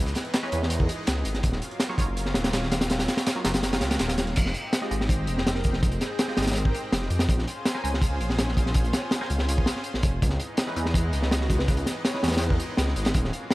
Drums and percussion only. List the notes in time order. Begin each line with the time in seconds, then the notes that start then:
0.06 snare, closed hi-hat
0.15 snare, closed hi-hat
0.25 closed hi-hat
0.34 snare, closed hi-hat
0.43 snare
0.52 closed hi-hat
0.63 snare
0.70 closed hi-hat
0.80 kick
0.89 closed hi-hat
1.07 snare, closed hi-hat
1.25 closed hi-hat
1.34 snare, closed hi-hat
1.43 kick, closed hi-hat
1.52 snare
1.62 closed hi-hat
1.71 closed hi-hat
1.80 snare, closed hi-hat
1.90 snare
1.98 kick, closed hi-hat
2.17 closed hi-hat
2.26 snare
2.34 snare, closed hi-hat
2.44 snare, closed hi-hat
2.53 snare, closed hi-hat
2.63 snare
2.71 snare, closed hi-hat
2.81 snare, closed hi-hat
2.90 snare, closed hi-hat
2.99 snare, closed hi-hat
3.08 snare, closed hi-hat
3.17 snare, closed hi-hat
3.26 snare, closed hi-hat
3.35 snare
3.45 snare, closed hi-hat
3.54 snare, closed hi-hat
3.63 snare, closed hi-hat
3.73 snare, closed hi-hat
3.81 snare, closed hi-hat
3.91 snare, closed hi-hat
3.99 snare, closed hi-hat
4.08 snare, closed hi-hat
4.18 snare, closed hi-hat
4.27 snare, closed hi-hat
4.36 kick, closed hi-hat, crash
4.46 snare
4.54 closed hi-hat
4.73 snare, closed hi-hat
4.82 snare
4.91 closed hi-hat
5.01 snare
5.09 kick, closed hi-hat
5.27 closed hi-hat
5.38 snare
5.47 snare, closed hi-hat
5.55 snare
5.64 kick, closed hi-hat
5.73 snare
5.83 kick, closed hi-hat
5.92 closed hi-hat
6.01 snare, closed hi-hat
6.19 snare, closed hi-hat
6.28 snare
6.37 snare, closed hi-hat
6.42 snare, closed hi-hat
6.47 snare, closed hi-hat
6.51 snare, closed hi-hat
6.56 closed hi-hat
6.65 kick
6.74 closed hi-hat
6.92 snare, closed hi-hat
7.02 snare
7.10 closed hi-hat
7.19 snare, closed hi-hat
7.29 kick, closed hi-hat
7.38 snare
7.48 closed hi-hat
7.65 snare, closed hi-hat
7.75 snare
7.85 closed hi-hat
7.94 snare
8.02 kick, closed hi-hat
8.20 closed hi-hat
8.29 snare
8.38 snare, closed hi-hat
8.48 snare
8.57 kick, closed hi-hat
8.66 snare
8.74 kick, closed hi-hat
8.84 closed hi-hat
8.93 snare, closed hi-hat
9.11 snare, closed hi-hat
9.21 snare
9.30 closed hi-hat
9.39 snare
9.49 closed hi-hat
9.58 kick
9.66 snare, closed hi-hat
9.76 snare
9.84 closed hi-hat
9.94 snare
10.03 kick, closed hi-hat
10.22 kick, closed hi-hat
10.30 snare
10.40 closed hi-hat
10.57 snare, closed hi-hat
10.67 snare
10.76 closed hi-hat
10.86 snare
10.94 kick, closed hi-hat
11.13 closed hi-hat
11.22 snare
11.31 snare, closed hi-hat
11.41 snare
11.50 kick, closed hi-hat
11.59 snare
11.68 kick, closed hi-hat
11.77 closed hi-hat
11.86 snare, closed hi-hat
12.05 snare, closed hi-hat
12.14 snare
12.23 snare, closed hi-hat
12.28 snare, closed hi-hat
12.32 snare, closed hi-hat
12.37 snare, closed hi-hat
12.41 closed hi-hat
12.50 kick
12.60 closed hi-hat
12.77 snare, closed hi-hat
12.88 snare
12.96 closed hi-hat
13.05 snare, closed hi-hat
13.14 kick, closed hi-hat
13.24 snare
13.33 closed hi-hat
13.50 snare